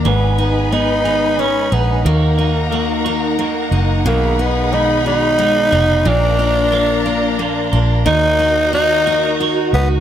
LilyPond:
<<
  \new Staff \with { instrumentName = "String section" } { \time 6/8 \key ees \minor \tempo 4. = 60 << { <ces'' ces'''>2. | <bes' bes''>2. | <gis' b''>2. | <bes' bes''>2. |
<bes' bes''>2. | } \\ { <ees' aes''>2. | <ees' ges''>2.~ | <ees' ges''>2. | <d' f''>2. |
<ges' ees''>2. | } >> }
  \new Staff \with { instrumentName = "Clean electric guitar" } { \time 6/8 \key ees \minor <aes, ees aes ces' ees' aes'>8 <aes ces' ees' aes'>8 <aes ces' ees' aes'>8 <aes, ees aes ces' ees' aes'>8 <aes ces' ees' aes'>8 <aes ces' ees' aes'>8 | <ees bes ees' ges'>8 <bes ees' ges'>8 <ees bes ees' ges'>8 <ees bes ees' ges'>8 <ees bes ees' ges'>8 <bes ees' ges'>8 | <b, dis gis dis' fis'>8 <gis dis' fis'>8 <dis gis dis' fis'>8 <b, dis gis dis' fis'>8 <dis gis dis' fis'>8 <gis dis' fis'>8 | <bes, f bes d' f'>8 <bes d' f'>8 <f bes d' f'>8 <bes, f bes d' f'>8 <f bes d' f'>8 <bes d' f'>8 |
<ees bes ees' ges'>8 <bes ees' ges'>8 <ees bes ees' ges'>8 <ees bes ees' ges'>8 <ees bes ees' ges'>8 <ees' ges'>8 | }
  \new Staff \with { instrumentName = "Steel-string acoustic guitar" } { \time 6/8 \key ees \minor aes,8 ees'8 ces'8 ees'8 ces'8 ees'8 | ees8 ees'8 bes8 ees'8 bes8 ees'8 | b,8 dis'8 gis8 dis'8 gis8 dis'8 | bes,8 d'8 bes8 d'8 bes8 d'8 |
ees8 ees'8 ges'8 ees'8 ges'8 ees'8 | }
  \new Staff \with { instrumentName = "Tenor saxophone" } { \time 6/8 \key ees \minor ces'8 ces'8 ees'4 des'8 ces'8 | bes2 r4 | bes8 b8 dis'8 dis'4. | d'2~ d'8 r8 |
ees'4 ees'4 r8 ces'8 | }
  \new Staff \with { instrumentName = "Fingered electric bass" } { \clef bass \time 6/8 \key ees \minor aes,,2~ aes,,8 bes,,8 | ees,2~ ees,8 ges,,8 | b,,2~ b,,8 f,,8 | bes,,2~ bes,,8 bes,,8 |
ees,2~ ees,8 des,8 | }
>>